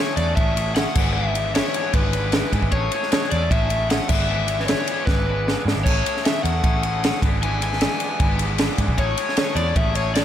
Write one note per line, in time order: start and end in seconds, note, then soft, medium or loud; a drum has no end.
0.00 0.17 A2 medium
0.00 0.17 E3 medium
0.00 0.17 A3 medium
0.00 0.18 C#4 medium
0.00 0.19 E4 loud
0.00 0.20 G#4 loud
0.00 0.18 A4 loud
0.00 0.16 C#5 medium
0.17 0.33 E2 medium
0.17 0.35 A2 medium
0.17 0.37 E3 medium
0.17 0.36 A3 medium
0.17 0.37 C#4 medium
0.17 0.38 E4 loud
0.17 0.38 G#4 medium
0.17 0.38 A4 medium
0.17 0.35 D5 medium
0.17 ride medium
0.36 0.85 A1 loud
0.36 0.54 A2 medium
0.36 0.57 E3 loud
0.36 0.55 A3 loud
0.36 0.56 C#4 loud
0.36 0.57 E4 loud
0.36 0.57 G#4 loud
0.36 0.58 A4 loud
0.36 0.75 E5 medium
0.36 kick loud
0.36 ride loud
0.56 0.75 A2 medium
0.56 0.76 E3 medium
0.56 0.75 A3 loud
0.56 0.76 C#4 medium
0.56 0.77 E4 loud
0.56 0.78 G#4 loud
0.56 0.77 A4 medium
0.56 ride medium
0.75 0.95 A2 medium
0.75 0.97 E3 medium
0.75 0.95 A3 medium
0.75 0.95 C#4 medium
0.75 0.97 E4 medium
0.75 0.97 G#4 medium
0.75 0.96 A4 loud
0.75 1.13 F#5 medium
0.75 snare loud
0.75 ride loud
0.95 1.60 G#1 loud
0.95 1.13 G#2 loud
0.95 1.14 E3 loud
0.95 1.15 G#3 loud
0.95 1.15 B3 loud
0.95 1.14 D4 loud
0.95 1.16 E4 loud
0.95 1.17 G#4 loud
0.95 kick loud
0.95 crash loud
1.13 1.33 G#2 medium
1.13 1.35 E3 loud
1.13 1.35 G#3 loud
1.13 1.35 B3 loud
1.13 1.35 D4 loud
1.13 1.36 E4 loud
1.13 1.36 G#4 loud
1.13 1.55 E5 loud
1.34 1.53 G#2 medium
1.34 1.54 E3 medium
1.34 1.55 G#3 medium
1.34 1.55 B3 loud
1.34 1.54 D4 medium
1.34 1.56 E4 medium
1.34 1.55 G#4 medium
1.34 ride medium
1.54 1.72 G#2 medium
1.54 1.74 E3 medium
1.54 1.75 G#3 loud
1.54 1.75 B3 loud
1.54 1.75 D4 loud
1.54 1.76 E4 loud
1.54 1.76 G#4 loud
1.54 1.95 C#5 medium
1.54 snare loud
1.54 ride loud
1.74 1.93 G#2 medium
1.74 1.94 E3 medium
1.74 1.95 G#3 loud
1.74 1.95 B3 loud
1.74 1.95 D4 loud
1.74 1.97 E4 loud
1.74 1.95 G#4 medium
1.74 ride medium
1.93 2.42 G#1 loud
1.93 2.13 G#2 medium
1.93 2.15 E3 loud
1.93 2.15 G#3 loud
1.93 2.16 B3 loud
1.93 2.15 D4 loud
1.93 2.16 E4 loud
1.93 2.15 G#4 loud
1.93 2.49 B4 medium
1.93 kick loud
1.93 ride loud
2.13 2.32 G#2 medium
2.13 2.33 E3 loud
2.13 2.34 G#3 medium
2.13 2.34 B3 medium
2.13 2.34 D4 loud
2.13 2.35 E4 medium
2.13 2.34 G#4 loud
2.13 ride medium
2.32 2.51 G#2 medium
2.32 2.53 E3 medium
2.32 2.54 G#3 medium
2.32 2.54 B3 medium
2.32 2.54 D4 medium
2.32 2.56 E4 loud
2.32 2.53 G#4 medium
2.32 snare loud
2.32 ride loud
2.53 2.71 G#2 medium
2.53 2.61 G#2 loud
2.53 2.73 E3 medium
2.53 2.74 G#3 loud
2.53 2.73 B3 loud
2.53 2.72 D4 medium
2.53 2.75 E4 loud
2.53 2.73 G#4 loud
2.53 kick medium
2.53 ride medium
2.62 2.72 G#1 medium
2.62 kick medium
2.72 2.88 A1 loud
2.72 2.92 A2 loud
2.72 2.91 E3 loud
2.72 2.94 G#3 loud
2.72 2.90 A3 loud
2.72 2.93 C#4 loud
2.72 2.94 E4 loud
2.72 2.95 G#4 loud
2.72 2.91 A4 loud
2.72 3.11 C#5 medium
2.72 kick medium
2.72 ride medium
2.91 3.11 A2 medium
2.91 3.11 E3 medium
2.91 3.13 G#3 medium
2.91 3.11 A3 medium
2.91 3.12 C#4 medium
2.91 3.14 E4 medium
2.91 3.14 G#4 loud
2.91 3.12 A4 medium
2.91 ride medium
3.03 snare soft
3.11 3.30 A2 medium
3.11 3.31 E3 medium
3.11 3.32 G#3 medium
3.11 3.31 A3 loud
3.11 3.32 C#4 loud
3.11 3.33 E4 medium
3.11 3.34 G#4 loud
3.11 3.31 A4 loud
3.11 3.31 C#5 medium
3.11 snare loud
3.11 ride loud
3.31 3.48 E2 loud
3.31 3.49 A2 medium
3.31 3.50 E3 medium
3.31 3.50 G#3 loud
3.31 3.50 A3 medium
3.31 3.50 C#4 medium
3.31 3.51 E4 loud
3.31 3.52 G#4 medium
3.31 3.51 A4 medium
3.31 3.49 D5 medium
3.31 ride medium
3.50 3.99 A1 loud
3.50 3.68 A2 medium
3.50 3.69 E3 loud
3.50 3.70 G#3 medium
3.50 3.69 A3 loud
3.50 3.70 C#4 loud
3.50 3.71 E4 loud
3.50 3.71 G#4 loud
3.50 3.70 A4 loud
3.50 3.90 E5 loud
3.50 kick loud
3.50 ride loud
3.69 3.88 A2 medium
3.69 3.88 E3 medium
3.69 3.90 G#3 loud
3.69 3.88 A3 medium
3.69 3.90 C#4 loud
3.69 3.91 E4 loud
3.69 3.91 G#4 loud
3.69 3.89 A4 loud
3.69 ride medium
3.89 4.08 A2 medium
3.89 4.08 E3 medium
3.89 4.09 G#3 medium
3.89 4.08 A3 medium
3.89 4.09 C#4 medium
3.89 4.10 E4 medium
3.89 4.10 G#4 loud
3.89 4.09 A4 medium
3.89 4.09 F#5 loud
3.89 snare loud
3.89 ride loud
4.08 4.73 G#1 loud
4.08 4.27 G#2 loud
4.08 4.28 E3 loud
4.08 4.29 G#3 medium
4.08 4.29 B3 loud
4.08 4.29 D4 loud
4.08 4.31 E4 loud
4.08 4.29 G#4 loud
4.08 4.63 E5 loud
4.08 kick loud
4.08 crash loud
4.28 4.47 G#2 loud
4.28 4.48 E3 loud
4.28 4.49 G#3 loud
4.28 4.49 B3 loud
4.28 4.49 D4 loud
4.28 4.50 E4 loud
4.28 4.48 G#4 loud
4.48 4.67 G#2 medium
4.48 4.68 E3 medium
4.48 4.68 G#3 medium
4.48 4.69 B3 medium
4.48 4.68 D4 medium
4.48 4.70 E4 loud
4.48 4.67 G#4 medium
4.48 ride medium
4.60 4.66 B4 medium
4.60 snare soft
4.67 4.86 G#2 medium
4.67 4.88 E3 medium
4.67 4.88 G#3 medium
4.67 4.88 B3 medium
4.67 4.88 D4 loud
4.67 4.90 E4 loud
4.67 4.87 G#4 loud
4.67 5.04 C#5 medium
4.67 snare loud
4.67 ride loud
4.87 5.06 G#2 medium
4.87 5.07 E3 medium
4.87 5.08 G#3 medium
4.87 5.08 B3 medium
4.87 5.08 D4 medium
4.87 5.10 E4 loud
4.87 5.07 G#4 loud
4.87 ride medium
5.06 5.55 G#1 loud
5.06 5.26 G#2 loud
5.06 5.27 E3 loud
5.06 5.28 G#3 loud
5.06 5.28 B3 loud
5.06 5.27 D4 loud
5.06 5.27 G#4 loud
5.06 5.62 B4 medium
5.06 kick loud
5.06 snare medium
5.10 5.29 E4 loud
5.27 5.45 G#2 medium
5.27 5.46 E3 medium
5.27 5.46 G#3 medium
5.27 5.47 B3 loud
5.27 5.46 D4 loud
5.27 5.48 E4 loud
5.27 5.47 G#4 medium
5.46 5.65 G#2 medium
5.46 5.66 E3 medium
5.46 5.67 G#3 medium
5.46 5.67 B3 medium
5.46 5.66 D4 loud
5.46 5.68 E4 medium
5.46 5.66 G#4 medium
5.46 snare medium
5.65 5.74 G#2 medium
5.65 5.85 G#2 medium
5.65 5.86 E3 medium
5.65 5.86 G#3 medium
5.65 5.86 B3 medium
5.65 5.85 D4 medium
5.65 5.88 E4 medium
5.65 5.86 G#4 loud
5.65 snare medium
5.76 5.86 G#1 medium
5.84 6.02 A1 loud
5.84 6.04 A2 medium
5.84 6.04 E3 loud
5.84 6.05 A3 loud
5.84 6.05 C#4 loud
5.84 6.07 E4 loud
5.84 6.05 A4 loud
5.84 6.25 C#5 loud
5.84 kick loud
5.84 crash loud
5.84 splash medium
5.88 6.07 G#4 loud
6.05 6.24 A2 loud
6.05 6.23 E3 medium
6.05 6.25 A3 medium
6.05 6.25 C#4 medium
6.05 6.27 E4 loud
6.05 6.27 G#4 medium
6.05 6.24 A4 loud
6.05 ride medium
6.17 snare soft
6.24 6.43 A2 medium
6.24 6.44 E3 medium
6.24 6.44 A3 medium
6.24 6.45 C#4 medium
6.24 6.46 E4 medium
6.24 6.46 G#4 medium
6.24 6.44 A4 medium
6.24 6.43 E5 medium
6.24 snare loud
6.24 ride loud
6.43 6.60 E2 loud
6.43 6.63 A2 medium
6.43 6.63 E3 medium
6.43 6.63 A3 medium
6.43 6.64 C#4 medium
6.43 6.66 E4 loud
6.43 6.66 G#4 medium
6.43 6.63 A4 medium
6.43 7.18 F#5 loud
6.43 ride medium
6.63 7.11 A1 medium
6.63 6.83 A2 medium
6.63 6.83 E3 medium
6.63 6.84 A3 loud
6.63 6.84 C#4 medium
6.63 6.86 E4 loud
6.63 6.86 G#4 loud
6.63 6.83 A4 medium
6.63 kick loud
6.63 ride loud
6.83 7.02 A2 loud
6.83 7.02 E3 medium
6.83 7.03 A3 medium
6.83 7.03 C#4 medium
6.83 7.05 E4 loud
6.83 7.05 G#4 loud
6.83 7.03 A4 medium
6.83 ride medium
7.03 7.22 A2 medium
7.03 7.22 E3 medium
7.03 7.22 A3 medium
7.03 7.22 C#4 medium
7.03 7.24 E4 medium
7.03 7.25 G#4 medium
7.03 7.22 A4 loud
7.03 snare loud
7.03 ride loud
7.22 7.86 G#1 loud
7.22 7.41 G#2 loud
7.22 7.42 E3 loud
7.22 7.43 G#3 loud
7.22 7.43 B3 loud
7.22 7.42 D4 loud
7.22 7.44 E4 loud
7.22 7.43 G#4 loud
7.22 kick loud
7.22 ride medium
7.42 7.60 G#2 loud
7.42 7.61 E3 loud
7.42 7.62 G#3 loud
7.42 7.62 B3 loud
7.42 7.62 D4 loud
7.42 7.63 E4 loud
7.42 7.63 G#4 loud
7.42 7.63 G#5 loud
7.42 ride loud
7.61 7.80 G#2 medium
7.61 7.82 E3 medium
7.61 7.83 G#3 medium
7.61 7.83 B3 medium
7.61 7.82 D4 loud
7.61 7.84 E4 loud
7.61 7.82 G#4 medium
7.61 7.81 G#5 loud
7.61 ride medium
7.73 snare soft
7.81 7.99 G#2 medium
7.81 8.01 E3 loud
7.81 8.02 G#3 medium
7.81 8.02 B3 medium
7.81 8.01 D4 loud
7.81 8.01 G#4 loud
7.81 8.36 G#5 loud
7.81 snare loud
7.81 ride loud
7.85 8.03 E4 medium
8.00 8.19 G#2 medium
8.00 8.21 E3 medium
8.00 8.21 G#3 medium
8.00 8.21 B3 loud
8.00 8.21 D4 loud
8.00 8.23 E4 medium
8.00 8.20 G#4 loud
8.00 ride medium
8.20 8.68 G#1 medium
8.20 8.39 G#2 loud
8.20 8.40 E3 medium
8.20 8.41 G#3 loud
8.20 8.41 B3 loud
8.20 8.41 D4 loud
8.20 8.42 E4 loud
8.20 8.40 G#4 loud
8.20 kick loud
8.20 ride loud
8.39 8.58 G#2 medium
8.39 8.60 E3 medium
8.39 8.60 G#3 loud
8.39 8.60 B3 loud
8.39 8.60 D4 loud
8.39 8.62 E4 loud
8.39 8.60 G#4 medium
8.39 ride medium
8.58 8.77 G#2 medium
8.58 8.78 E3 medium
8.58 8.79 G#3 medium
8.58 8.79 B3 loud
8.58 8.78 D4 loud
8.58 8.80 E4 medium
8.58 8.80 G#4 loud
8.58 snare loud
8.58 ride loud
8.78 8.97 G#2 medium
8.78 8.86 G#2 medium
8.78 8.96 E3 medium
8.78 8.97 G#3 medium
8.78 8.98 B3 loud
8.78 8.97 D4 loud
8.78 8.98 E4 medium
8.78 8.99 G#4 loud
8.78 kick medium
8.78 ride medium
8.88 8.98 B1 medium
8.88 kick medium
8.96 9.14 A1 loud
8.96 9.16 A2 loud
8.96 9.17 E3 medium
8.96 9.17 G#3 loud
8.96 9.17 A3 loud
8.96 9.17 C#4 loud
8.96 9.18 E4 loud
8.96 9.18 G#4 loud
8.96 9.18 A4 loud
8.96 9.36 C#5 loud
8.96 kick medium
8.96 ride loud
9.17 9.35 A2 medium
9.17 9.37 E3 medium
9.17 9.36 G#3 medium
9.17 9.36 A3 medium
9.17 9.36 C#4 medium
9.17 9.38 E4 loud
9.17 9.38 G#4 loud
9.17 9.38 A4 loud
9.17 ride medium
9.29 snare soft
9.37 9.54 A2 medium
9.37 9.56 E3 loud
9.37 9.56 G#3 medium
9.37 9.55 A3 loud
9.37 9.56 C#4 loud
9.37 9.57 E4 medium
9.37 9.57 G#4 loud
9.37 9.57 A4 loud
9.37 9.56 C#5 medium
9.37 snare loud
9.37 ride loud
9.55 9.72 E2 loud
9.55 9.75 A2 medium
9.55 9.74 E3 medium
9.55 9.76 G#3 loud
9.55 9.74 A3 medium
9.55 9.76 C#4 medium
9.55 9.77 E4 loud
9.55 9.78 G#4 loud
9.55 9.75 A4 loud
9.55 9.76 D5 loud
9.55 ride medium
9.75 10.23 A1 loud
9.75 9.94 A2 loud
9.75 9.95 E3 medium
9.75 9.95 G#3 medium
9.75 9.95 A3 medium
9.75 9.95 C#4 loud
9.75 9.96 E4 loud
9.75 9.97 G#4 loud
9.75 9.96 A4 loud
9.75 9.96 E5 loud
9.75 kick loud
9.75 ride loud
9.95 10.13 A2 medium
9.95 10.14 E3 medium
9.95 10.15 G#3 medium
9.95 10.14 A3 medium
9.95 10.14 C#4 loud
9.95 10.16 E4 loud
9.95 10.16 G#4 loud
9.95 10.15 A4 medium
9.95 10.14 C#5 medium
9.95 ride medium
10.15 10.25 A2 medium
10.15 10.25 E3 medium
10.15 10.25 G#3 medium
10.15 10.25 A3 loud
10.15 10.25 C#4 medium
10.15 10.25 E4 medium
10.15 10.25 G#4 loud
10.15 10.25 A4 loud
10.15 10.20 D5 loud
10.15 snare loud
10.15 ride loud